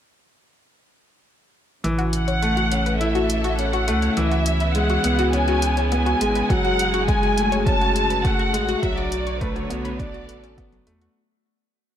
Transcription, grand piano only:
1.84 E3
2.42 A3
2.72 C#4
3.01 E4
3.59 C#4
3.88 A3
4.17 E3
4.75 G#3
5.04 B3
5.33 C#4
5.92 B3
6.21 G#3
6.50 F#3
7.08 G#3
7.37 A3
7.66 C#4
8.25 A3
8.53 G#3
8.83 F#3
9.41 A3
9.70 B3
9.99 D4
10.58 B3
10.87 A3

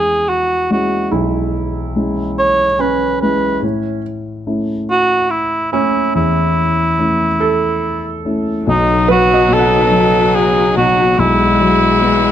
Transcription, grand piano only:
Already playing: E2 G#3 C#4 E4
0.71 G#3 C#4 E4
1.12 B1
1.96 G#3 C#4 E4
3.23 G#3 C#4 E4
3.62 A2
4.47 A3 C#4 E4
5.72 A3 C#4 E4
6.15 E2
6.99 A3 C#4 E4
8.25 A3 C#4 E4
8.67 B1 B2
9.09 F#3
9.49 B2
9.91 F#3
10.77 B2
11.18 B1 B2
11.60 F#3
12.02 B3

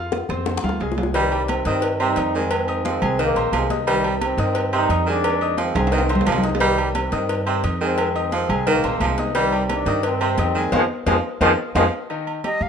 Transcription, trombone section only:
1.16 C3 D#3 G3
1.50 C4
1.68 D#3 G3 C4
2.01 G3 C4 D#4
2.36 D#3 G#3 C4
2.86 D#3 G#3 C4
3.22 D#3 A#3
3.54 C3 D#3 G#3
3.89 C3 D#3 G3
4.24 C4
4.41 D#3 G3 C4
4.74 G3 C4 D#4
5.09 G#3 D4
5.60 D#3 G#3 C4
5.94 D#3 G#3 C4
6.29 G#3 C4 D#4
6.62 C3 D#3 G3
6.97 C4
7.14 D#3 G3 C4
7.82 D#3 G#3 C4
8.34 D#3 G#3 C4
8.68 D#3 A#3
9.02 C3 D#3 G#3
9.36 C3 D#3 G3
9.71 G3 D4
10.05 D#3 G3 C4
10.40 D#3 G3 C4
10.74 D#3 F3 G#3
11.07 D#3 F3 G#3
11.42 D#3 F3 G#3
11.77 D#3 F3 G#3

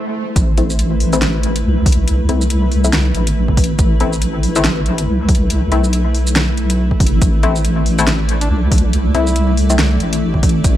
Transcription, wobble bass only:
0.36 A1
1.64 C2
2.29 C2
3.14 A1
3.79 A1
5.07 C2
5.72 B1
7.00 G1
7.22 A1
8.50 C2
9.14 C2
10.00 A1
10.64 A1

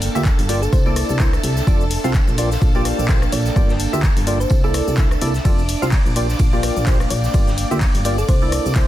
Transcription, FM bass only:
0.15 D2
0.39 G1
0.73 C2
1.10 C2
1.44 C2
1.67 F1
2.04 C2
2.28 A#1
2.62 A#1
2.99 A#1
3.32 A#1
3.56 G1
3.93 D2
4.17 G1
4.51 C2
4.88 C2
5.21 C2
5.45 F1
5.82 C2
6.06 A#1
6.40 A#1
6.77 A#1
7.11 A#1
7.34 G1
7.71 D2
7.95 G1
8.29 C2
8.66 C2

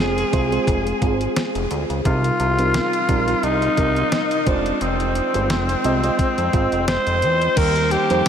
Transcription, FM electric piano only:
Already playing: G#3 C4 F4 C5
0.32 G#3 C4 F4 C5
0.51 G#3 C4 F4 C5
1.01 G#3 C4 F4 G#4
2.05 C3 G3 C4 D#4 A#4
2.58 G3 C4 D#4 A#4
3.08 G3 C4 D#4 A#4
3.27 G3 C4 D#4 A#4
3.77 G3 C4 D#4 A#4
4.46 G#3 C4 F4 C5
5.34 G#3 C4 F4 C5
5.84 G#3 C4 F4 D#5
6.03 G#3 C4 F4 D#5
6.53 G#3 C4 F4 C5
7.56 D#3 G3 A#3 D#4 A#4
8.10 G3 A#3 D#4 C5

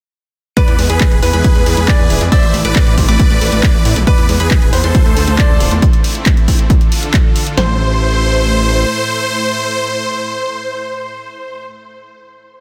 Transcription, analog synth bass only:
0.68 E2
0.79 E2
0.90 E2
1.11 E1
1.22 E2
1.33 E2
1.55 E2
1.66 E2
1.77 E2
1.99 E2
2.10 E1
2.21 F2
2.43 A1
2.54 A1
2.65 A1
2.87 A2
2.98 A1
3.09 A1
3.30 A1
3.41 A1
3.52 A1
3.74 A1
3.85 A2
3.96 B1
4.18 E2
4.29 E2
4.40 E2
4.62 E1
4.73 E2
4.84 E2
5.06 D2
5.17 D2
5.28 D2
5.49 D2
5.60 D1
5.71 E2
7.57 A1

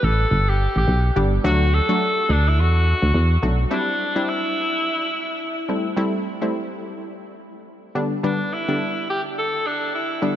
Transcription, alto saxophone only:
0.04 A4
0.49 G4
0.78 G4
1.46 F#4
1.74 A4
2.31 D4
2.48 E4
2.60 F#4
3.72 D4
4.29 E4
8.25 D4
8.54 E4
9.10 G4
9.38 A4
9.66 D4
9.94 E4

